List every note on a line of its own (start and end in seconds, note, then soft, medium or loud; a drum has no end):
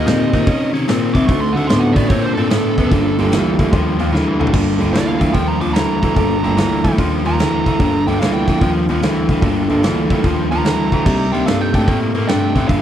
0.00 0.50 D3 medium
0.00 0.51 F4 medium
0.00 0.51 G4 medium
0.00 0.51 A#4 medium
0.00 0.70 D#5 loud
0.06 0.32 A#2 loud
0.06 0.31 D#3 medium
0.06 0.31 C4 loud
0.06 snare loud
0.06 open hi-hat medium
0.34 0.47 A#2 medium
0.34 0.46 D#3 medium
0.34 0.46 C4 medium
0.34 kick medium
0.34 open hi-hat medium
0.47 0.73 C3 medium
0.47 0.72 D#3 medium
0.47 0.72 C#4 medium
0.47 kick loud
0.47 open hi-hat medium
0.73 0.87 C3 medium
0.73 0.86 D#3 medium
0.73 0.86 C#4 medium
0.73 open hi-hat medium
0.88 1.14 A#2 medium
0.88 1.12 D#3 medium
0.88 1.12 C4 medium
0.88 snare loud
0.88 open hi-hat medium
1.14 1.28 C2 loud
1.14 1.27 D#3 medium
1.14 1.27 C4 medium
1.14 1.25 D6 loud
1.14 kick medium
1.14 open hi-hat medium
1.26 1.54 D2 medium
1.26 1.53 D3 medium
1.26 1.53 A3 loud
1.26 1.49 C4 medium
1.26 1.50 D#4 medium
1.26 1.49 F#4 medium
1.26 1.50 A4 medium
1.26 1.40 C#6 loud
1.26 kick loud
1.26 open hi-hat medium
1.41 1.55 C6 medium
1.53 1.69 D2 loud
1.53 1.68 D3 medium
1.53 1.68 A3 medium
1.53 2.13 C4 medium
1.53 2.12 D#4 medium
1.53 2.13 F#4 medium
1.53 2.14 A4 medium
1.53 1.67 F#5 medium
1.57 open hi-hat medium
1.67 1.95 A2 medium
1.67 1.94 D3 loud
1.67 1.94 B3 loud
1.67 1.81 C6 loud
1.67 snare loud
1.67 open hi-hat medium
1.80 1.94 F#5 loud
1.93 2.09 A2 loud
1.93 2.08 D3 medium
1.93 2.09 B3 medium
1.93 2.08 D5 medium
1.93 kick loud
1.93 open hi-hat medium
2.09 2.36 A#2 medium
2.09 2.34 D3 medium
2.09 2.35 C4 medium
2.09 2.22 C#5 loud
2.09 kick loud
2.09 open hi-hat medium
2.22 2.34 C5 medium
2.34 2.50 A#2 medium
2.34 2.49 D3 medium
2.34 2.50 C4 medium
2.34 3.54 A4 loud
2.34 open hi-hat medium
2.50 2.77 A2 medium
2.50 2.75 D3 medium
2.50 2.75 B3 loud
2.50 snare loud
2.50 open hi-hat medium
2.78 2.91 F#1 loud
2.78 2.90 D3 medium
2.78 2.90 B3 medium
2.78 kick medium
2.78 open hi-hat medium
2.90 3.17 G1 medium
2.90 3.16 G2 medium
2.90 3.16 D3 loud
2.90 3.12 A#3 medium
2.90 3.12 D4 medium
2.90 3.12 F4 medium
2.90 3.12 A4 medium
2.90 kick loud
2.90 open hi-hat medium
3.16 3.32 G1 medium
3.16 3.31 G2 medium
3.16 3.31 D3 medium
3.16 3.75 A#3 medium
3.16 3.75 D4 medium
3.16 3.75 F4 medium
3.16 3.76 G4 loud
3.16 open hi-hat medium
3.32 3.58 D2 medium
3.32 3.56 G2 medium
3.32 3.56 E3 loud
3.32 snare loud
3.32 open hi-hat medium
3.59 3.72 D2 loud
3.59 3.71 G2 medium
3.59 3.71 E3 medium
3.59 kick medium
3.59 open hi-hat medium
3.72 3.99 D#2 medium
3.72 3.97 G2 medium
3.72 3.97 F3 medium
3.72 kick loud
3.72 open hi-hat medium
3.98 4.13 D#2 loud
3.98 4.11 G2 medium
3.98 4.12 F3 medium
3.98 4.11 F5 medium
3.98 open hi-hat medium
4.13 4.38 D2 medium
4.13 4.37 G2 medium
4.13 4.37 E3 medium
4.13 4.51 A#5 medium
4.13 snare medium
4.39 4.53 D2 loud
4.39 4.52 G2 medium
4.39 4.52 E3 medium
4.39 mid tom medium
4.47 floor tom medium
4.52 4.80 G1 medium
4.52 4.78 G2 medium
4.52 4.78 D3 medium
4.52 4.74 A#3 medium
4.52 4.74 D4 medium
4.52 4.74 F4 medium
4.52 4.75 A4 medium
4.52 kick loud
4.52 crash loud
4.77 4.92 G2 medium
4.77 4.93 D3 medium
4.77 5.37 A#3 medium
4.77 5.37 D4 medium
4.77 5.37 F4 medium
4.77 5.38 A4 loud
4.77 open hi-hat medium
4.82 4.94 G1 medium
4.93 5.20 D2 medium
4.93 5.18 G2 medium
4.93 5.18 E3 loud
4.93 5.07 D5 medium
4.93 snare loud
4.93 open hi-hat medium
5.07 5.34 F5 medium
5.19 5.35 D2 medium
5.19 5.31 G2 medium
5.19 5.32 E3 medium
5.19 kick medium
5.19 open hi-hat medium
5.33 5.60 D#2 medium
5.33 5.58 G2 medium
5.33 5.58 F3 medium
5.33 5.48 G5 medium
5.33 kick loud
5.33 open hi-hat medium
5.48 5.61 A#5 medium
5.61 5.75 D#2 medium
5.61 5.73 G2 medium
5.61 5.74 F3 medium
5.61 5.74 D6 medium
5.61 open hi-hat medium
5.74 6.01 D2 medium
5.74 5.99 G2 medium
5.74 5.99 E3 medium
5.74 6.94 A#5 medium
5.74 snare loud
5.74 open hi-hat medium
6.02 6.16 D2 medium
6.02 6.15 G2 medium
6.02 6.15 E3 medium
6.02 kick medium
6.02 open hi-hat medium
6.16 6.43 G1 medium
6.16 6.41 G2 medium
6.16 6.41 D3 medium
6.16 6.38 A#3 medium
6.16 6.38 D4 medium
6.16 6.38 F4 medium
6.16 6.38 A4 medium
6.16 kick loud
6.16 open hi-hat medium
6.43 6.58 G1 medium
6.43 6.56 G2 medium
6.43 6.56 D3 medium
6.43 7.02 A3 loud
6.43 7.02 A#3 medium
6.43 7.03 D4 medium
6.43 7.02 F4 medium
6.43 open hi-hat medium
6.57 6.83 D2 medium
6.57 6.82 G2 medium
6.57 6.82 E3 medium
6.57 snare loud
6.57 open hi-hat medium
6.84 6.97 D2 medium
6.84 6.97 G2 medium
6.84 6.97 E3 medium
6.84 kick medium
6.84 open hi-hat medium
6.98 7.24 D#2 medium
6.98 7.22 G2 medium
6.98 7.23 F3 medium
6.98 kick loud
6.98 open hi-hat medium
7.25 7.39 D#2 medium
7.25 7.38 G2 medium
7.25 7.38 F3 medium
7.25 8.05 A#5 medium
7.25 open hi-hat medium
7.39 7.65 D2 medium
7.39 7.63 G2 medium
7.39 7.64 E3 loud
7.39 snare loud
7.39 open hi-hat medium
7.66 7.79 D2 medium
7.66 7.78 G2 medium
7.66 7.79 E3 medium
7.66 kick medium
7.66 open hi-hat medium
7.79 8.06 G1 medium
7.79 8.04 G2 medium
7.79 8.04 D3 loud
7.79 8.01 A#3 medium
7.79 8.01 D4 medium
7.79 8.01 F4 medium
7.79 8.02 A4 medium
7.79 kick loud
7.79 open hi-hat medium
8.06 8.20 G1 medium
8.06 8.20 G2 medium
8.06 8.20 D3 medium
8.06 8.64 A#3 medium
8.06 8.65 D4 medium
8.06 8.65 F4 medium
8.06 8.65 A4 medium
8.06 8.19 G5 loud
8.06 open hi-hat medium
8.19 8.46 D2 medium
8.19 8.45 G2 medium
8.19 8.45 E3 loud
8.19 8.33 F5 loud
8.19 snare loud
8.19 open hi-hat medium
8.33 8.46 G5 medium
8.47 8.61 D2 medium
8.47 8.60 G2 medium
8.47 8.60 E3 medium
8.47 8.69 G5 medium
8.47 kick medium
8.47 open hi-hat medium
8.61 8.87 D#2 medium
8.61 8.86 G2 medium
8.61 8.86 F3 medium
8.61 kick loud
8.61 open hi-hat medium
8.89 9.02 D#2 medium
8.89 9.01 G2 medium
8.89 9.01 F3 medium
8.89 open hi-hat medium
9.02 9.27 D2 medium
9.02 9.27 G2 medium
9.02 9.27 E3 loud
9.02 snare loud
9.02 open hi-hat medium
9.29 9.42 D2 medium
9.29 9.42 G2 medium
9.29 9.42 E3 medium
9.29 kick medium
9.29 open hi-hat medium
9.41 9.68 G1 medium
9.41 9.67 G2 medium
9.41 9.68 D3 loud
9.41 9.63 A#3 medium
9.41 9.63 D4 medium
9.41 9.63 F4 medium
9.41 9.63 A4 loud
9.41 kick loud
9.41 open hi-hat medium
9.67 9.83 G1 medium
9.67 9.82 G2 medium
9.67 9.82 D3 medium
9.67 10.27 A#3 medium
9.67 10.27 D4 medium
9.67 10.27 F4 medium
9.67 10.27 A4 loud
9.67 open hi-hat medium
9.83 10.10 D2 medium
9.83 10.08 G2 medium
9.83 10.08 E3 loud
9.83 snare loud
9.83 open hi-hat medium
10.10 10.24 D2 medium
10.10 10.23 G2 medium
10.10 10.23 E3 medium
10.10 kick medium
10.10 open hi-hat medium
10.24 10.50 D#2 medium
10.24 10.48 G2 medium
10.24 10.49 F3 medium
10.24 kick loud
10.24 open hi-hat medium
10.51 10.65 D#2 medium
10.51 10.64 G2 medium
10.51 10.64 F3 medium
10.51 11.30 A#5 loud
10.51 open hi-hat medium
10.64 10.90 D2 medium
10.64 10.89 G2 medium
10.64 10.89 E3 medium
10.64 snare loud
10.64 open hi-hat medium
10.92 11.05 D2 medium
10.92 11.05 G2 medium
10.92 11.05 E3 medium
10.92 kick medium
10.92 open hi-hat soft
11.04 11.32 C2 medium
11.04 11.30 C3 medium
11.04 11.30 G3 medium
11.04 11.26 A#3 medium
11.04 11.27 D4 medium
11.04 11.27 D#4 medium
11.04 11.27 G4 medium
11.04 kick loud
11.04 crash loud
11.31 11.46 C2 medium
11.31 11.45 C3 medium
11.31 11.45 G3 medium
11.31 11.90 A#3 medium
11.31 11.91 D4 medium
11.31 11.91 D#4 medium
11.31 11.91 G4 medium
11.31 11.46 G5 medium
11.31 open hi-hat medium
11.46 11.73 G2 medium
11.46 11.71 C3 medium
11.46 11.71 A3 loud
11.46 11.61 F5 loud
11.46 snare loud
11.46 open hi-hat medium
11.61 11.74 G5 medium
11.73 11.87 G2 medium
11.73 11.86 C3 medium
11.73 11.86 A3 medium
11.73 11.96 G5 loud
11.73 kick medium
11.73 open hi-hat medium
11.87 12.13 A2 medium
11.87 12.11 C3 medium
11.87 12.12 A#3 medium
11.87 kick loud
11.87 open hi-hat medium
12.14 12.28 A2 medium
12.14 12.27 C3 medium
12.14 12.27 A#3 medium
12.14 open hi-hat medium
12.28 12.55 G2 medium
12.28 12.52 C3 medium
12.28 12.53 A3 loud
12.28 12.68 G5 loud
12.28 snare loud
12.28 open hi-hat medium
12.55 12.68 A1 loud
12.55 12.67 C3 medium
12.55 12.68 A3 medium
12.55 kick medium
12.55 open hi-hat medium
12.68 12.82 G1 medium
12.68 12.82 G2 medium
12.68 12.82 D3 medium
12.68 12.82 A#3 medium
12.68 12.82 D4 medium
12.68 12.82 F4 medium
12.68 12.82 A4 medium
12.68 12.82 F5 loud
12.68 kick loud
12.68 open hi-hat medium